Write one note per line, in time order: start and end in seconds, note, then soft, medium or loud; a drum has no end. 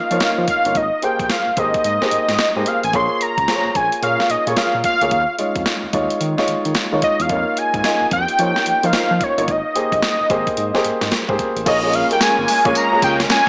0.00 0.10 A#3 medium
0.00 0.11 D#4 medium
0.00 0.11 F4 medium
0.00 0.77 C5 medium
0.00 0.11 C#5 medium
0.00 0.77 D#5 medium
0.00 0.49 F5 loud
0.10 0.19 F3 medium
0.10 0.47 A#3 medium
0.10 0.47 D#4 medium
0.10 0.47 F4 medium
0.10 0.47 C#5 medium
0.10 closed hi-hat medium
0.20 snare loud
0.20 closed hi-hat medium
0.38 0.46 F3 loud
0.48 0.78 F5 medium
0.48 kick medium
0.48 closed hi-hat medium
0.65 0.74 G1 medium
0.65 0.75 A#3 medium
0.65 0.75 D#4 medium
0.65 0.76 F4 medium
0.65 0.76 C#5 medium
0.65 closed hi-hat medium
0.75 0.90 G#1 loud
0.75 1.05 D#5 medium
0.75 kick loud
0.75 closed hi-hat medium
1.02 1.45 A#3 medium
1.02 1.45 G4 medium
1.02 1.46 G#4 medium
1.02 1.46 C5 medium
1.02 1.33 G5 medium
1.02 closed hi-hat medium
1.19 1.28 A#1 medium
1.19 kick medium
1.19 closed hi-hat medium
1.30 1.60 F5 medium
1.30 snare loud
1.30 closed hi-hat medium
1.47 1.51 G#1 soft
1.57 1.72 G#1 medium
1.57 1.87 A#3 medium
1.57 1.87 G4 medium
1.57 1.88 G#4 medium
1.57 1.88 C5 medium
1.57 1.85 D#5 medium
1.57 kick loud
1.57 closed hi-hat medium
1.74 kick medium
1.74 closed hi-hat medium
1.84 1.99 G#2 medium
1.84 2.69 D#5 loud
1.84 closed hi-hat medium
2.01 2.38 A#3 medium
2.01 2.38 G4 medium
2.01 2.38 G#4 medium
2.01 2.38 C5 medium
2.01 snare medium
2.11 2.19 G#2 soft
2.11 closed hi-hat medium
2.29 2.37 G#2 loud
2.29 snare medium
2.29 closed hi-hat medium
2.38 snare loud
2.38 closed hi-hat medium
2.56 2.65 G#2 loud
2.56 2.85 A#3 medium
2.56 2.85 G4 medium
2.56 2.85 G#4 medium
2.56 2.85 C5 medium
2.66 2.84 F5 loud
2.66 closed hi-hat medium
2.83 2.92 A1 medium
2.83 2.97 G#5 medium
2.83 closed hi-hat soft
2.93 3.08 A#1 loud
2.93 3.36 A#3 medium
2.93 3.36 F4 medium
2.93 3.37 G#4 medium
2.93 3.37 C#5 medium
2.93 3.24 C6 loud
2.93 kick loud
2.93 closed hi-hat medium
3.21 3.78 A#5 loud
3.21 closed hi-hat medium
3.38 3.46 C#2 medium
3.38 kick medium
3.38 closed hi-hat medium
3.48 3.91 A#3 medium
3.48 3.91 F4 medium
3.48 3.91 G#4 medium
3.48 3.56 C5 medium
3.48 snare loud
3.48 closed hi-hat medium
3.55 3.94 C#5 medium
3.65 3.69 A#1 soft
3.75 3.90 A#1 loud
3.75 4.03 G#5 loud
3.75 kick medium
3.75 closed hi-hat medium
3.92 closed hi-hat medium
4.02 4.17 A#2 loud
4.02 4.32 A#3 medium
4.02 4.33 F4 medium
4.02 4.33 G#4 medium
4.02 4.33 C#5 medium
4.02 4.32 F5 medium
4.02 closed hi-hat medium
4.20 snare medium
4.30 4.37 A#2 soft
4.30 4.49 D#5 medium
4.30 closed hi-hat medium
4.47 4.55 A#2 loud
4.47 4.83 A#3 medium
4.47 4.83 F4 medium
4.47 4.83 G#4 medium
4.47 4.84 C#5 medium
4.47 4.59 C#5 medium
4.47 closed hi-hat medium
4.56 4.84 F5 medium
4.56 snare loud
4.56 closed hi-hat medium
4.74 4.83 A#2 loud
4.84 5.35 F5 medium
4.84 kick medium
4.84 closed hi-hat medium
5.01 5.10 D2 medium
5.01 5.11 A#3 medium
5.01 5.11 F4 medium
5.01 5.12 G#4 medium
5.01 5.12 C#5 medium
5.01 closed hi-hat medium
5.11 5.26 D#2 loud
5.11 kick loud
5.11 closed hi-hat medium
5.38 5.81 G#3 medium
5.38 5.82 D#4 medium
5.38 5.82 F4 medium
5.38 5.82 C#5 medium
5.38 closed hi-hat medium
5.56 5.64 F2 loud
5.56 kick medium
5.56 closed hi-hat medium
5.66 snare loud
5.66 closed hi-hat medium
5.83 5.87 D#2 soft
5.93 6.08 D#2 medium
5.93 6.23 G#3 medium
5.93 6.24 D#4 medium
5.93 6.24 F4 medium
5.93 6.24 C#5 medium
5.93 kick loud
5.93 closed hi-hat medium
6.10 closed hi-hat medium
6.21 6.35 D#3 loud
6.21 closed hi-hat medium
6.37 6.74 G#3 medium
6.37 6.74 D#4 medium
6.37 6.74 F4 medium
6.37 6.75 C#5 loud
6.37 snare medium
6.48 6.55 D#3 soft
6.48 closed hi-hat medium
6.65 6.74 D#3 medium
6.65 closed hi-hat soft
6.75 snare loud
6.75 closed hi-hat medium
6.92 7.01 D#3 medium
6.92 7.21 G#3 medium
6.92 7.21 D#4 medium
6.92 7.22 F4 medium
6.92 7.22 C#5 medium
7.02 7.23 D#5 loud
7.02 kick medium
7.02 closed hi-hat medium
7.20 7.28 E2 loud
7.20 7.60 F5 loud
7.20 closed hi-hat medium
7.29 7.44 F2 loud
7.29 7.72 A#3 medium
7.29 7.72 D#4 medium
7.29 7.73 F4 medium
7.29 7.73 C#5 medium
7.29 kick loud
7.29 closed hi-hat medium
7.57 8.12 G#5 loud
7.57 closed hi-hat medium
7.74 7.83 G#2 medium
7.74 kick medium
7.74 closed hi-hat soft
7.84 8.27 A#3 medium
7.84 8.27 D#4 medium
7.84 8.27 F4 medium
7.84 8.27 D#5 medium
7.84 snare loud
7.84 closed hi-hat medium
8.02 8.06 F2 soft
8.11 8.26 F2 loud
8.11 8.87 G5 loud
8.11 kick medium
8.11 closed hi-hat medium
8.28 closed hi-hat medium
8.38 8.53 F3 medium
8.38 8.69 A#3 medium
8.38 8.69 D#4 medium
8.38 8.69 F4 medium
8.38 8.69 C#5 medium
8.38 closed hi-hat medium
8.56 snare medium
8.66 8.73 F3 medium
8.66 closed hi-hat medium
8.83 8.92 F3 medium
8.83 9.19 A#3 medium
8.83 9.20 D#4 medium
8.83 9.20 F4 medium
8.83 9.20 C5 medium
8.83 9.25 F5 loud
8.83 closed hi-hat medium
8.93 snare loud
8.93 closed hi-hat medium
9.11 9.19 F3 loud
9.21 9.52 C#5 medium
9.21 kick medium
9.21 closed hi-hat medium
9.37 9.46 G1 medium
9.37 9.48 A#3 medium
9.37 9.48 D#4 medium
9.37 9.48 F4 medium
9.37 9.48 C#5 medium
9.37 closed hi-hat medium
9.48 9.62 G#1 loud
9.48 11.13 D#5 medium
9.48 kick loud
9.48 closed hi-hat medium
9.75 10.18 A#3 medium
9.75 10.18 G4 medium
9.75 10.18 G#4 medium
9.75 10.18 C5 medium
9.75 closed hi-hat medium
9.92 10.01 A#1 medium
9.92 kick medium
9.92 closed hi-hat medium
10.02 snare loud
10.02 closed hi-hat medium
10.20 10.24 G#1 medium
10.30 10.44 G#1 loud
10.30 10.60 A#3 medium
10.30 10.60 G4 medium
10.30 10.60 G#4 medium
10.30 10.61 C5 medium
10.30 kick loud
10.30 closed hi-hat medium
10.47 kick medium
10.47 closed hi-hat medium
10.57 10.72 G#2 loud
10.57 closed hi-hat medium
10.74 11.10 A#3 medium
10.74 11.11 G4 medium
10.74 11.11 G#4 medium
10.74 11.11 C5 medium
10.74 snare medium
10.84 10.92 G#2 soft
10.84 closed hi-hat medium
11.01 11.10 G#2 loud
11.01 snare medium
11.01 closed hi-hat medium
11.12 snare loud
11.12 closed hi-hat medium
11.28 11.37 G#2 loud
11.28 11.58 A#3 medium
11.28 11.58 G4 medium
11.28 11.58 G#4 medium
11.28 11.58 C5 loud
11.28 kick medium
11.39 kick medium
11.39 closed hi-hat medium
11.57 11.65 A1 medium
11.57 closed hi-hat medium
11.65 12.03 A#1 loud
11.65 13.49 G#3 medium
11.65 11.78 A#3 medium
11.65 13.49 A#3 medium
11.65 13.49 C#4 medium
11.65 11.79 F4 medium
11.65 11.79 G#4 medium
11.65 11.79 C#5 loud
11.65 11.96 D#5 medium
11.65 kick loud
11.65 closed hi-hat medium
11.65 crash loud
11.65 tambourine medium
11.82 12.01 A#3 medium
11.82 12.01 F4 medium
11.82 12.01 G#4 medium
11.82 12.01 C#5 medium
11.93 12.11 F5 medium
11.93 closed hi-hat medium
12.10 12.47 A#3 medium
12.10 12.47 F4 medium
12.10 12.47 G#4 medium
12.10 12.47 A#4 medium
12.10 12.21 G5 medium
12.10 closed hi-hat medium
12.21 12.78 G#5 loud
12.21 snare loud
12.21 closed hi-hat medium
12.21 tambourine medium
12.38 12.46 G#1 medium
12.48 open hi-hat medium
12.48 tambourine medium
12.65 12.74 A#1 medium
12.65 12.83 A#3 medium
12.65 12.83 F4 medium
12.65 12.83 G#4 medium
12.65 12.83 C#5 loud
12.65 kick loud
12.65 closed hi-hat medium
12.75 13.03 A#5 loud
12.75 closed hi-hat medium
12.75 tambourine medium
12.92 13.40 A#3 medium
12.92 13.40 F4 medium
12.92 13.41 G#4 medium
12.92 13.41 C#5 medium
13.02 13.25 C#2 medium
13.02 13.16 G5 loud
13.02 kick loud
13.02 closed hi-hat medium
13.02 tambourine medium
13.20 snare medium
13.20 closed hi-hat medium
13.30 13.49 G#5 loud
13.30 snare loud
13.30 closed hi-hat medium
13.30 tambourine loud